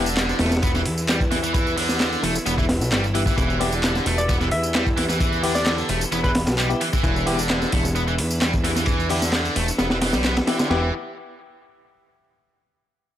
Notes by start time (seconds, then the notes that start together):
Already playing: E1 D3 E3 B3 E4
0.06 tambourine
0.17 snare, clap, ride, tambourine
0.29 snare, tambourine
0.39 E1 A3, snare, open hi-hat, ride
0.46 snare, ride
0.51 snare, ride, tambourine
0.56 snare, ride
0.63 B3, kick, ride, tambourine
0.75 E3, snare, tambourine
0.85 E2, open hi-hat, ride
0.98 tambourine
1.08 G3, snare, clap, ride, tambourine
1.21 kick, tambourine
1.31 E3, snare, open hi-hat, ride
1.44 E3, tambourine
1.54 E3, kick, ride, tambourine
1.67 tambourine
1.77 D3, open hi-hat
1.89 snare, tambourine
2.00 snare, clap, ride, tambourine
2.13 tambourine
2.23 E1 A3, open hi-hat, ride
2.35 tambourine
2.46 E1 B3, ride, tambourine
2.58 E3, kick, tambourine
2.69 snare, open hi-hat, ride
2.80 B1, snare, tambourine
2.91 G1 G3, snare, clap, ride, tambourine
3.04 tambourine
3.15 E3 B3 E4 G4, open hi-hat, ride
3.26 E3, kick, tambourine
3.37 E1 E3 G4, kick, ride, tambourine
3.50 tambourine
3.60 D3 B3 E4 G4, snare, open hi-hat, ride
3.72 tambourine
3.83 snare, clap, ride, tambourine
3.95 snare, tambourine
4.06 E1 A3, open hi-hat, ride
4.18 D5, tambourine
4.29 B3, kick, ride, tambourine
4.41 E3, snare, tambourine
4.51 E2 E5, open hi-hat, ride
4.63 tambourine
4.74 G3, snare, clap, ride, tambourine
4.87 kick, tambourine
4.97 E3, snare, open hi-hat, ride
5.09 E3, snare, tambourine
5.20 E3, kick, ride, tambourine
5.33 tambourine
5.43 D3 B3 E4 G4, open hi-hat
5.55 D5, snare, tambourine
5.66 D5, snare, clap, ride, tambourine
5.78 tambourine
5.89 E1 A3, open hi-hat, ride
6.01 tambourine
6.12 E1 B3, ride, tambourine
6.23 E3 B4, kick, tambourine
6.35 snare, open hi-hat, ride
6.47 B1, snare, ride, tambourine
6.58 G3, clap, tambourine
6.70 B3 E4 G4, tambourine
6.81 E3, open hi-hat, ride
6.93 E3, kick, tambourine
7.03 E1 E3 D4, kick, ride, tambourine
7.16 tambourine
7.26 D3 B3 E4 G4, snare, open hi-hat, ride
7.39 tambourine
7.49 snare, clap, ride, tambourine
7.62 snare, tambourine
7.72 E1 A3, kick, open hi-hat, ride
7.85 snare, tambourine
7.96 B3, ride, tambourine
8.08 E3, tambourine
8.18 E2, open hi-hat, ride
8.31 tambourine
8.42 G3, snare, clap, ride, tambourine
8.53 kick, tambourine
8.64 E3, snare, open hi-hat, ride
8.76 E3, snare, tambourine
8.86 E3, kick, ride, tambourine
9.00 tambourine
9.09 D3 B3 E4 G4, open hi-hat
9.22 snare, tambourine
9.33 snare, clap, ride, tambourine
9.45 tambourine
9.56 E1 A3, open hi-hat, ride
9.68 tambourine
9.78 E1 B3, snare, ride, tambourine
9.90 E3, snare, ride, tambourine
10.02 E3, snare, open hi-hat, ride
10.13 B1 G3, snare, ride, tambourine
10.24 B3, snare, clap, ride, tambourine
10.37 snare, ride, tambourine
10.47 E3 B3 E4 G4, snare, open hi-hat, ride
10.59 D3, snare, ride, tambourine
10.70 E1 E3 B3 E4 G4, snare, ride bell